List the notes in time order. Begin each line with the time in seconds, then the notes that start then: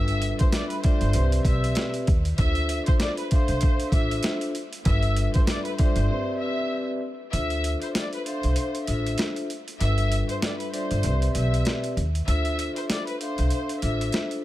Already playing: G1 G3 D4 F4 A4 B4 E5
0.08 closed hi-hat
0.22 closed hi-hat
0.39 C5, kick, closed hi-hat
0.53 D5, snare, closed hi-hat
0.69 B4, closed hi-hat
0.83 G3 D4 F4 A4 C5 D5 E5, kick, closed hi-hat
1.01 G1, closed hi-hat
1.13 C2 C4 G4 B4 D5 E5, closed hi-hat
1.32 closed hi-hat
1.45 B1 C4 G4 B4 D5 E5, kick, closed hi-hat
1.64 closed hi-hat
1.75 snare, closed hi-hat
1.94 closed hi-hat
2.07 D#2, kick, closed hi-hat
2.25 closed hi-hat
2.37 D2 D4 F4 A4 C5 E5, kick, closed hi-hat
2.55 closed hi-hat
2.69 closed hi-hat
2.86 C5, kick, closed hi-hat
3.00 D5, snare, closed hi-hat
3.17 B4, closed hi-hat
3.31 D4 A4 C5 E5 F5, kick, closed hi-hat
3.48 C2, closed hi-hat
3.61 kick, closed hi-hat
3.80 closed hi-hat
3.92 A1 D4 F4 A4 C5 E5, kick, closed hi-hat
4.11 closed hi-hat
4.23 snare, closed hi-hat
4.41 closed hi-hat
4.55 closed hi-hat
4.73 closed hi-hat
4.85 G1 G3 D4 F4 A4 B4 E5, kick, closed hi-hat
5.03 closed hi-hat
5.16 closed hi-hat
5.34 C5, kick, closed hi-hat
5.47 D5, snare, closed hi-hat
5.65 B4, closed hi-hat
5.77 G3 D4 F4 A4 C5 D5 E5, kick, closed hi-hat
5.96 G1, closed hi-hat
6.09 C4 G4 B4 D5 E5
6.40 C4 G4 B4 D5 E5
7.32 D2 D4 F4 A4 C5 E5, closed hi-hat
7.50 closed hi-hat
7.64 closed hi-hat
7.82 C5, closed hi-hat
7.95 D5, snare, closed hi-hat
8.13 B4, closed hi-hat
8.26 D4 A4 C5 E5 F5, closed hi-hat
8.43 C2, closed hi-hat
8.56 closed hi-hat
8.75 closed hi-hat
8.86 A1 D4 F4 A4 C5 E5, closed hi-hat
9.06 closed hi-hat
9.18 snare, closed hi-hat
9.36 closed hi-hat
9.50 closed hi-hat
9.68 closed hi-hat
9.80 G1 G3 D4 F4 A4 B4 E5, closed hi-hat
9.98 closed hi-hat
10.12 closed hi-hat
10.29 C5, closed hi-hat
10.42 D5, snare, closed hi-hat
10.59 B4, closed hi-hat
10.72 G3 D4 F4 A4 C5 D5 E5, closed hi-hat
10.91 G1, closed hi-hat
11.03 C2 C4 G4 B4 D5 E5, closed hi-hat
11.22 closed hi-hat
11.35 B1 C4 G4 B4 D5 E5, closed hi-hat
11.54 closed hi-hat
11.65 snare, closed hi-hat
11.84 closed hi-hat
11.97 D#2, closed hi-hat
12.15 closed hi-hat
12.27 D2 D4 F4 A4 C5 E5, closed hi-hat
12.45 closed hi-hat
12.59 closed hi-hat
12.76 C5, closed hi-hat
12.90 D5, snare, closed hi-hat
13.07 B4, closed hi-hat
13.21 D4 A4 C5 E5 F5, closed hi-hat
13.38 C2, closed hi-hat
13.50 closed hi-hat
13.69 closed hi-hat
13.82 A1 D4 F4 A4 C5 E5, closed hi-hat
14.01 closed hi-hat
14.12 snare, closed hi-hat
14.31 closed hi-hat